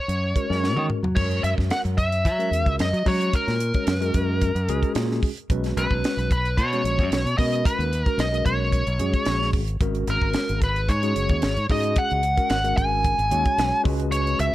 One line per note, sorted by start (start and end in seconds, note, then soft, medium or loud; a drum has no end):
0.00 0.86 C#5 medium
0.08 0.33 F#2 medium
0.08 closed hi-hat medium
0.36 0.46 G#3 medium
0.36 0.46 C#4 medium
0.36 0.46 F#4 medium
0.36 0.46 A#4 medium
0.36 kick medium
0.36 closed hi-hat medium
0.50 0.76 F#2 medium
0.50 1.00 G#3 medium
0.50 1.00 C#4 medium
0.50 1.00 F#4 medium
0.50 1.00 A#4 medium
0.50 snare soft
0.64 snare soft
0.76 0.88 D#3 medium
0.76 high tom soft
0.90 mid tom medium
1.03 1.15 F#3 medium
1.03 floor tom medium
1.16 1.41 F#2 medium
1.16 1.97 G#3 medium
1.16 1.97 C#4 medium
1.16 1.97 F#4 medium
1.16 1.97 A#4 medium
1.16 1.44 C#5 medium
1.16 kick loud
1.16 crash medium
1.31 closed hi-hat soft
1.43 1.56 F#2 medium
1.43 1.51 E5 medium
1.43 closed hi-hat medium
1.58 1.70 F#2 medium
1.58 kick medium
1.58 snare soft
1.70 1.79 F#5 loud
1.70 snare medium
1.70 closed hi-hat medium
1.85 2.26 F#2 medium
1.85 closed hi-hat soft
1.98 2.75 E5 medium
1.98 kick medium
1.98 closed hi-hat medium
2.12 closed hi-hat soft
2.25 2.49 F#3 medium
2.25 kick medium
2.25 closed hi-hat medium
2.39 2.89 G#3 medium
2.39 2.89 C#4 medium
2.39 2.89 F#4 medium
2.39 2.89 A#4 medium
2.39 closed hi-hat soft
2.51 2.66 E2 medium
2.51 closed hi-hat medium
2.66 2.77 C#2 medium
2.66 kick medium
2.66 closed hi-hat soft
2.79 2.92 F#2 medium
2.79 3.08 D#5 medium
2.79 snare medium
2.79 closed hi-hat medium
2.93 3.04 F#3 medium
2.93 closed hi-hat soft
3.05 3.30 F#3 loud
3.05 3.56 G#3 medium
3.05 3.56 C#4 medium
3.05 3.56 F#4 medium
3.05 3.56 C#5 medium
3.05 3.35 C#5 medium
3.05 kick medium
3.05 open hi-hat medium
3.21 closed hi-hat soft
3.33 4.92 A#4 medium
3.33 kick loud
3.33 closed hi-hat medium
3.48 3.71 A#2 medium
3.48 snare soft
3.48 closed hi-hat soft
3.60 closed hi-hat medium
3.74 3.94 G#3 medium
3.74 3.94 C#4 medium
3.74 3.94 F#4 medium
3.74 3.94 C#5 medium
3.74 kick medium
3.74 closed hi-hat soft
3.87 4.11 F#2 medium
3.87 snare loud
3.87 closed hi-hat medium
4.01 4.51 G#3 medium
4.01 4.51 C#4 medium
4.01 4.51 F#4 medium
4.01 4.51 A#4 medium
4.01 closed hi-hat soft
4.14 4.51 F#2 medium
4.14 kick medium
4.14 closed hi-hat medium
4.41 kick medium
4.41 closed hi-hat medium
4.55 4.66 F#2 medium
4.55 closed hi-hat soft
4.68 4.80 C#2 medium
4.68 5.30 G#3 medium
4.68 5.29 C#4 medium
4.68 5.29 F#4 medium
4.68 5.29 G#4 loud
4.68 closed hi-hat medium
4.83 kick medium
4.83 closed hi-hat soft
4.95 5.19 A#2 medium
4.95 snare loud
4.95 closed hi-hat medium
5.11 snare soft
5.23 kick medium
5.23 open hi-hat medium
5.37 closed hi-hat soft
5.50 5.73 B1 medium
5.50 6.30 G#3 medium
5.50 6.30 C#4 medium
5.50 6.30 F#4 medium
5.50 6.31 B4 medium
5.50 kick loud
5.50 closed hi-hat medium
5.64 snare soft
5.64 closed hi-hat soft
5.77 5.89 B1 loud
5.77 6.31 B4 medium
5.77 closed hi-hat medium
5.91 6.02 B1 medium
5.91 kick medium
6.04 snare loud
6.04 closed hi-hat medium
6.17 6.59 B1 medium
6.17 closed hi-hat soft
6.31 6.56 B4 medium
6.31 kick medium
6.31 closed hi-hat medium
6.45 closed hi-hat soft
6.57 6.81 B2 loud
6.57 7.37 C#5 medium
6.57 kick medium
6.57 closed hi-hat medium
6.73 7.22 G#3 medium
6.73 7.22 C#4 medium
6.73 7.23 F#4 medium
6.73 7.22 C#5 medium
6.73 closed hi-hat soft
6.84 7.00 A#1 medium
6.84 closed hi-hat medium
6.99 7.10 F#2 medium
6.99 kick medium
6.99 closed hi-hat soft
7.12 7.24 B1 medium
7.12 snare medium
7.12 closed hi-hat medium
7.25 7.36 B2 medium
7.25 closed hi-hat soft
7.38 7.62 B2 loud
7.38 7.89 G#3 medium
7.38 7.89 C#4 medium
7.38 7.89 F#4 medium
7.38 7.89 A#4 medium
7.38 7.65 D#5 medium
7.38 kick medium
7.38 open hi-hat medium
7.54 closed hi-hat soft
7.65 8.05 B4 medium
7.65 kick loud
7.65 closed hi-hat medium
7.79 8.03 D#2 medium
7.79 closed hi-hat soft
7.93 closed hi-hat medium
8.05 8.26 G#3 medium
8.05 8.26 C#4 medium
8.05 8.26 F#4 medium
8.05 8.21 A#4 medium
8.05 8.26 A#4 medium
8.05 kick medium
8.05 closed hi-hat soft
8.18 8.42 B1 medium
8.18 8.44 D#5 medium
8.18 snare medium
8.18 closed hi-hat medium
8.33 8.83 G#3 medium
8.33 8.83 C#4 medium
8.33 8.83 F#4 medium
8.33 8.83 A#4 medium
8.33 closed hi-hat soft
8.46 8.82 B1 medium
8.46 9.50 C#5 medium
8.46 kick medium
8.46 closed hi-hat medium
8.72 kick medium
8.72 closed hi-hat medium
8.87 8.98 B1 medium
8.87 closed hi-hat soft
8.99 9.12 F#2 medium
8.99 9.61 G#3 medium
8.99 9.61 C#4 medium
8.99 9.61 F#4 medium
8.99 9.60 G#4 medium
8.99 closed hi-hat medium
9.14 kick medium
9.14 closed hi-hat soft
9.25 9.51 A#1 medium
9.25 snare medium
9.25 closed hi-hat medium
9.42 snare soft
9.53 9.78 G#1 medium
9.53 kick medium
9.53 open hi-hat medium
9.67 closed hi-hat soft
9.80 10.05 G#1 medium
9.80 10.62 G#3 medium
9.80 10.62 C#4 medium
9.80 10.62 F#4 medium
9.80 10.62 A#4 medium
9.80 kick loud
9.80 closed hi-hat medium
9.95 closed hi-hat soft
10.07 10.20 G#1 loud
10.07 10.59 A#4 medium
10.07 closed hi-hat medium
10.22 10.33 G#1 medium
10.22 kick medium
10.33 snare medium
10.33 closed hi-hat medium
10.49 10.90 G#1 medium
10.49 closed hi-hat soft
10.62 10.90 B4 medium
10.62 kick medium
10.62 closed hi-hat medium
10.76 closed hi-hat soft
10.88 11.13 G#2 loud
10.88 11.66 C#5 medium
10.88 kick medium
10.88 closed hi-hat medium
11.03 11.53 G#3 medium
11.03 11.53 C#4 medium
11.03 11.53 F#4 medium
11.03 11.53 G#4 medium
11.03 closed hi-hat soft
11.16 11.31 F#1 medium
11.16 closed hi-hat medium
11.29 11.41 D#2 medium
11.29 kick medium
11.29 closed hi-hat soft
11.42 11.56 G#1 medium
11.42 snare loud
11.42 closed hi-hat medium
11.57 11.68 G#2 medium
11.57 closed hi-hat soft
11.69 11.94 G#2 medium
11.69 12.20 G#3 medium
11.69 12.21 C#4 medium
11.69 12.21 F#4 medium
11.69 12.20 G#4 medium
11.69 11.98 D#5 medium
11.69 kick medium
11.69 open hi-hat medium
11.84 closed hi-hat soft
11.96 12.49 F#5 medium
11.96 kick loud
11.96 closed hi-hat medium
12.10 12.35 C#2 medium
12.10 closed hi-hat soft
12.23 closed hi-hat medium
12.37 12.57 G#3 medium
12.37 12.57 C#4 medium
12.37 12.57 F#4 medium
12.37 12.57 A#4 medium
12.37 kick medium
12.37 closed hi-hat soft
12.50 12.74 G#1 medium
12.50 12.76 F#5 loud
12.50 snare medium
12.50 closed hi-hat medium
12.64 13.15 G#3 medium
12.64 13.15 C#4 medium
12.64 13.15 F#4 medium
12.64 13.15 A#4 medium
12.64 closed hi-hat soft
12.77 13.14 G#1 medium
12.77 13.81 G#5 medium
12.77 kick medium
12.77 closed hi-hat medium
13.04 kick medium
13.04 closed hi-hat medium
13.18 13.30 G#1 medium
13.18 closed hi-hat soft
13.31 13.44 D#2 medium
13.31 13.82 G#3 medium
13.31 13.83 C#4 medium
13.31 13.82 F#4 medium
13.31 13.86 C#5 loud
13.31 closed hi-hat medium
13.45 kick medium
13.45 closed hi-hat soft
13.58 13.71 B1 medium
13.58 snare loud
13.58 closed hi-hat medium
13.83 14.34 C#2 loud
13.83 14.55 G#3 medium
13.83 14.55 C#4 medium
13.83 14.55 F#4 medium
13.83 14.55 B4 loud
13.83 kick loud
13.83 open hi-hat medium
14.00 closed hi-hat soft
14.12 14.40 C#5 medium
14.12 closed hi-hat medium
14.27 closed hi-hat soft
14.39 14.52 C#2 loud
14.39 14.55 E5 medium
14.39 closed hi-hat medium